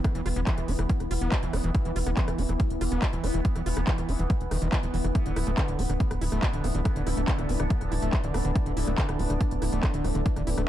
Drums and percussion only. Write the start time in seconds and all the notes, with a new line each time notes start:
0.04 kick, cross-stick, closed hi-hat
0.15 closed hi-hat
0.26 cross-stick, open hi-hat
0.36 closed hi-hat
0.47 kick, clap, closed hi-hat
0.58 cross-stick, closed hi-hat
0.68 open hi-hat
0.79 cross-stick, closed hi-hat
0.90 kick, closed hi-hat
1.00 cross-stick, closed hi-hat
1.11 open hi-hat
1.32 kick, cross-stick, clap, closed hi-hat
1.43 closed hi-hat
1.53 cross-stick, open hi-hat
1.64 closed hi-hat
1.75 kick, cross-stick, closed hi-hat
1.85 closed hi-hat
1.96 open hi-hat
2.07 cross-stick, closed hi-hat
2.17 kick, clap, closed hi-hat
2.28 cross-stick, closed hi-hat
2.38 open hi-hat
2.49 cross-stick, closed hi-hat
2.60 kick, closed hi-hat
2.70 closed hi-hat
2.81 cross-stick, open hi-hat
2.92 closed hi-hat
3.02 kick, cross-stick, clap, closed hi-hat
3.13 closed hi-hat
3.24 cross-stick, open hi-hat
3.34 closed hi-hat
3.45 kick, closed hi-hat
3.56 cross-stick, closed hi-hat
3.66 open hi-hat
3.77 cross-stick
3.87 kick, clap, closed hi-hat
3.98 cross-stick, closed hi-hat
4.09 open hi-hat
4.19 closed hi-hat
4.30 kick, cross-stick, closed hi-hat
4.41 closed hi-hat
4.51 cross-stick, open hi-hat
4.62 closed hi-hat
4.73 kick, cross-stick, clap, closed hi-hat
4.83 closed hi-hat
4.94 open hi-hat
5.04 cross-stick, closed hi-hat
5.15 kick, cross-stick, closed hi-hat
5.26 closed hi-hat
5.36 cross-stick, open hi-hat
5.47 closed hi-hat
5.58 kick, cross-stick, clap, closed hi-hat
5.68 closed hi-hat
5.79 open hi-hat
5.90 cross-stick, closed hi-hat
6.00 kick, closed hi-hat
6.11 cross-stick, closed hi-hat
6.21 open hi-hat
6.32 cross-stick, closed hi-hat
6.43 kick, clap, closed hi-hat
6.53 closed hi-hat
6.64 cross-stick, open hi-hat
6.75 closed hi-hat
6.85 kick, cross-stick, closed hi-hat
6.96 closed hi-hat
7.07 cross-stick, open hi-hat
7.17 closed hi-hat
7.28 kick, clap, closed hi-hat
7.39 cross-stick, closed hi-hat
7.49 open hi-hat
7.60 cross-stick, closed hi-hat
7.70 kick, closed hi-hat
7.81 cross-stick, closed hi-hat
7.92 open hi-hat
8.02 closed hi-hat
8.13 kick, cross-stick, clap, closed hi-hat
8.24 closed hi-hat
8.34 cross-stick, open hi-hat
8.45 closed hi-hat
8.55 kick, cross-stick, closed hi-hat
8.66 closed hi-hat
8.77 open hi-hat
8.87 cross-stick, closed hi-hat
8.98 kick, clap, closed hi-hat
9.09 cross-stick, closed hi-hat
9.19 open hi-hat
9.30 cross-stick, closed hi-hat
9.41 kick, closed hi-hat
9.51 closed hi-hat
9.62 cross-stick, open hi-hat
9.72 closed hi-hat
9.83 kick, cross-stick, clap, closed hi-hat
9.94 closed hi-hat
10.04 cross-stick, open hi-hat
10.15 closed hi-hat
10.26 kick, closed hi-hat
10.36 cross-stick, closed hi-hat
10.47 open hi-hat
10.58 cross-stick, closed hi-hat